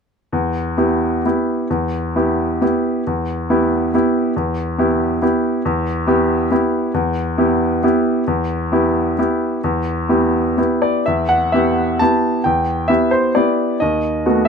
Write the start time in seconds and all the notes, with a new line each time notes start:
0.33 E2
0.77 B3 E4 G4
1.26 B3 E4 G4
1.70 E2
2.16 B3 E4 G4
2.61 B3 E4 G4
3.07 E2
3.50 B3 E4 G4
3.94 B3 E4 G4
4.36 E2
4.78 B3 E4 G4
5.22 B3 E4 G4
5.65 E2
6.07 B3 E4 G4
6.51 B3 E4 G4
6.94 E2
7.38 B3 E4 G4
7.83 B3 E4 G4
8.27 E2
8.72 B3 E4 G4
9.19 B3 E4 G4
9.64 E2
10.09 B3 E4 G4
10.57 B3 E4 G4
10.82 D5
11.06 E2 E5
11.29 F#5
11.52 B3 E4 G4 E5
11.99 B3 E4 G4 A5
12.44 E2 G5
12.88 B3 E4 G4 E5
13.11 C5
13.35 B3 E4 G4 D5
13.80 D#2 D#5
14.26 A3 B3 F#4